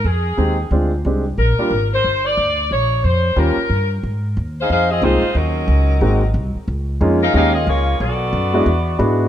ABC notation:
X:1
M:4/4
L:1/8
Q:"Swing" 1/4=181
K:Eb
V:1 name="Saxophone section"
A4 z4 | B3 c2 d3 | _d2 c2 B3 z | [K:Dblyd] z3 [EAcf] [EAcf] [CFAe] [A,EFc]2 |
[_G,DEB]6- [G,DEB] z | z3 [EABf] [EABf] [B,FAe] [B,FAd]2 | [=B,^F=A=d]6- [B,FAd] z |]
V:2 name="Grand piano"
z2 [A,CEG] z [A,CDF] z [A,CDG] z | z [G,B,DF] z6 | z4 [G,B,_DF] z3 | [K:Dblyd] z6 [A,B,CEF] z |
z4 [A,B,CE_G] z3 | z2 [A,B,DEF] z [A,B,DEG] z3 | z3 [A,=B,=D_F^F] z2 [^G,B,D=EF]2 |]
V:3 name="Upright bass" clef=bass
F,,2 E,,2 D,,2 C,,2 | B,,, z A,,,2 G,,,2 D,,2 | B,,,2 F,,2 E,, z G,,2 | [K:Dblyd] A,,2 E,,2 F,,2 C,, z |
E,,2 D,,2 A,,,2 C,, z | D,,2 F,,2 E,,2 D,,2 | =B,,,2 ^F,,2 =E,,2 ^G,,2 |]